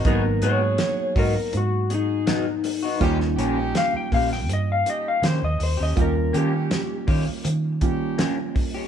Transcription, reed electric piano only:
\new Staff \with { instrumentName = "Reed electric piano" } { \time 4/4 \key ees \mixolydian \tempo 4 = 81 <ges bes ces' ees'>1 | <g bes des' f'>1 | <g bes des' f'>2~ <g bes des' f'>8 <g bes des' f'>4. | }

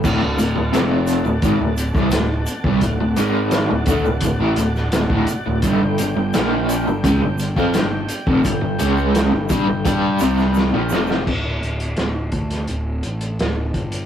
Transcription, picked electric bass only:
\new Staff \with { instrumentName = "Picked electric bass" } { \clef bass \time 4/4 \key d \mixolydian \tempo 4 = 85 d,,16 d,,16 d,,16 d,,16 f,,8. d,,16 gis,,16 d,,8 c,16 d,,8 r16 c,16 | d,,16 d,,16 gis,,8. d,,16 d,16 d,,16 d,,16 a,,16 d,,8 d,,16 d,,16 r16 d,,16 | g,,16 g,,16 g,,16 g,,16 bes,,8. g,,16 cis,16 g,,8 f,16 g,,8 r16 f,,16 | g,,16 g,,16 cis,8. g,,16 g,16 g,,16 g,8 c,8. bes,,16 f,,8 |
d,,8 d,,8 d,,8 d,8 d,,8 a,,8 d,,8 g,,8 | }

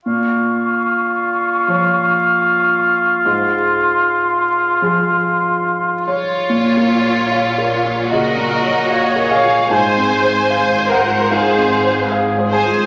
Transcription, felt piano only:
\new Staff \with { instrumentName = "Felt piano" } { \time 4/4 \key bes \minor \tempo 4 = 75 << { r1 | r2. r8 des''8~ | des''2 ees''4. f''8 | aes''4. ges''8 f''4 r8 aes''8 | } \\ { bes,2 <f f' des''>2 | aes,2 <f f' aes'>2 | \tuplet 3/2 { bes,8 bes8 des''8 f''8 bes'8 f'8 des8 bes8 des''8 f''8 bes'8 f'8 } | \tuplet 3/2 { aes,8 c'8 c''8 f''8 c''8 f'8 aes,8 c'8 c''8 f''8 c''8 f'8 } | } >> }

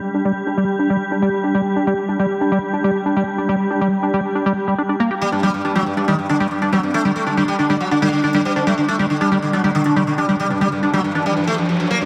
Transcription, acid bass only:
\new Staff \with { instrumentName = "Acid bass" } { \time 4/4 \key c \dorian \tempo 4 = 139 r16 d'16 g16 r16 d'16 g16 r16 d'16 g16 r16 d'16 g16 r16 d'16 g16 r16 | d'16 g16 r16 d'16 g16 r16 d'16 g16 r16 d'16 g16 r16 d'16 g16 r16 d'16 | g16 r16 d'16 g16 r16 d'16 g16 r16 d'16 g16 r16 g16 d'16 d'16 bes16 g'16 | r16 d'16 g16 r16 d'16 g16 r16 d'16 g16 r16 d'16 g16 r16 d'16 g16 r16 |
d'16 g16 r16 d'16 g16 r16 d'16 g16 r16 d'16 g16 r16 d'16 g16 r16 d'16 | g16 r16 d'16 g16 r16 d'16 g16 r16 d'16 g16 r16 d'16 g16 r16 d'16 g16 | r16 d'16 g16 r16 d'16 g16 r16 d'16 r2 | }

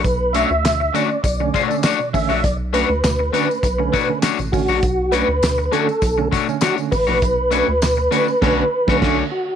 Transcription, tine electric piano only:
\new Staff \with { instrumentName = "Tine electric piano" } { \time 4/4 \key b \minor \tempo 4 = 100 b,16 r16 <a cis'>16 r16 b,16 r16 <d a cis'>16 <a cis'>16 r16 <d a cis'>16 b,16 <d a cis'>16 <a cis'>16 b,16 <d a cis'>16 r16 | b,16 r16 <a cis'>16 r16 b,16 r16 <d a cis'>16 <a cis'>16 r16 <d a cis'>16 b,16 <d a cis'>16 <a cis'>16 b,16 <d a cis'>16 r16 | b,16 r16 <a cis'>16 r16 b,16 r16 <d a cis'>16 <a cis'>16 r16 <d a cis'>16 b,16 <d a cis'>16 r16 <d a cis'>16 r16 b,16 | b,16 r16 <a cis'>16 r16 b,16 r16 <d a cis'>16 <a cis'>16 <d a cis'>8 r16 <d a cis'>16 <d a cis'>8 r8 | }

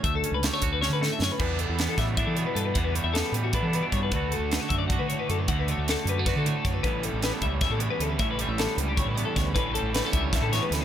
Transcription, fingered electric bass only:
\new Staff \with { instrumentName = "Fingered electric bass" } { \clef bass \time 7/8 \key d \major \tempo 4 = 154 d,8 r16 cis,8 r16 d,8. d8 r16 fis,16 r16 | e,8. e,8 r16 a,8. e8 r16 g,8 | e,8. e,8 r16 a,8. e8 r16 g,8 | d,8. d,8 r16 fis,8. d8 r16 fis,8 |
d,8. d,8 r16 fis,8. d8 r16 fis,8 | a,,8. a,,8 r16 cis,8. a,8 r16 d,8 | a,,8. a,,8 r16 cis,8. a,8 r16 d,8 | a,,8. a,,8 r16 cis,8. a,8 r16 d,8 | }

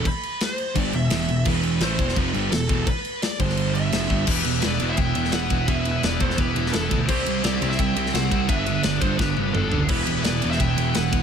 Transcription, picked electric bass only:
\new Staff \with { instrumentName = "Picked electric bass" } { \clef bass \time 4/4 \key e \minor \tempo 4 = 171 r2 g,,8 e,,8 e,,8 e,,8 | e,,4 a,,8 e,,8 f,,8 g,,8 e,,8 e,,8 | r4. g,,4. f,,8 g,,8 | e,,8 e,,8 e,,8 e,,8 e,,8 e,,8 e,,8 e,,8 |
e,,4 e,,8 e,,8 e,,8 e,,8 e,,8 d,8 | c,8 c,8 c,8 c,8 c,8 c,8 c,8 c,8 | g,,4 g,,8 g,,8 g,,8 g,,8 g,,8 fis,,8 | e,,8 e,,8 e,,8 e,,8 e,,8 e,,8 e,,8 e,,8 | }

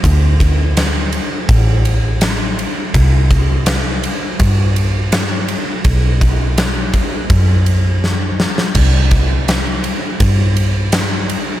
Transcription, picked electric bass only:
\new Staff \with { instrumentName = "Picked electric bass" } { \clef bass \time 4/4 \key d \mixolydian \tempo 4 = 83 d,2 a,,2 | c,2 g,2 | b,,2 fis,2 | c,2 g,2 | }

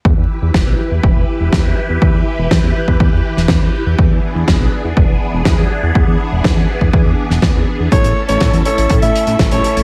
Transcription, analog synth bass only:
\new Staff \with { instrumentName = "Analog synth bass" } { \clef bass \time 4/4 \key a \mixolydian \tempo 4 = 122 e,16 e,16 r16 e,16 e,,16 b,,16 r16 e,16 e,,16 e,,16 r16 e,,16 e,16 e,16 r16 e,16 | e,16 e,16 r16 e,,16 e,16 e,16 r16 e,16 e,16 e,16 r16 e,,16 e,16 e,16 r16 e,16 | e,16 e,16 r16 e,16 e,,16 b,,16 r16 e,16 e,,16 e,,16 r16 e,,16 e,16 e,16 r16 e,16 | e,16 e,16 r16 e,,16 e,16 e,16 r16 e,16 e,16 e,16 r16 e,,16 e,16 e,16 r16 e,16 |
a,,16 a,,16 r16 a,,16 a,16 e,16 r16 a,,16 a,16 a,16 r16 a,16 a,,16 a,,16 r16 a,,16 | }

